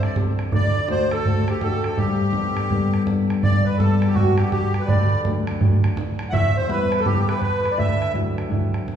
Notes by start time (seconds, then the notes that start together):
Already playing: C2 C4 D4 G4 A4 C5 E5 F#5
0.03 D5, bodhran
0.16 C4 D4 G4, bodhran
0.39 bodhran
0.46 bodhran
0.52 D2 D5, bodhran
0.65 D5
0.77 D5
0.88 A3 D4 F#4 C5, bodhran
1.11 A4, bodhran
1.25 A3 D4 F#4, bodhran
1.48 G4, bodhran
1.61 A3 D4 F#4 A4, bodhran
1.84 A4, bodhran
1.91 bodhran
1.97 G2 G4, bodhran
2.33 G3 B3 D4, bodhran
2.57 bodhran
2.70 G3 B3 D4, bodhran
2.94 bodhran
3.07 G3 B3 D4, bodhran
3.30 bodhran
3.37 bodhran
3.42 G2 D5, bodhran
3.65 B4
3.78 G3 B3 D4 A4, bodhran
4.02 bodhran
4.07 G4
4.14 G3 B3 D4 F#4, bodhran
4.37 G4, bodhran
4.45 bodhran
4.51 G4, bodhran
4.64 bodhran
4.74 bodhran
4.80 B4
4.87 D2 D5, bodhran
5.24 F#3 A3 D4, bodhran
5.47 bodhran
5.60 F#3 A3 D4, bodhran
5.84 bodhran
5.91 bodhran
5.97 bodhran
6.08 bodhran
6.19 bodhran
6.30 E2 E5 F#5, bodhran
6.34 E5
6.56 C5
6.69 G3 B3 E4 B4, bodhran
6.92 bodhran
6.99 A4
7.05 G3 B3 E4 G4, bodhran
7.29 B4, bodhran
7.36 C5, bodhran
7.41 B4, bodhran
7.54 bodhran
7.65 bodhran
7.72 D5
7.78 D2 E5, bodhran
8.02 bodhran
8.14 F#3 D4 E4, bodhran
8.38 bodhran
8.50 F#3 D4 E4, bodhran
8.74 bodhran
8.81 bodhran
8.88 bodhran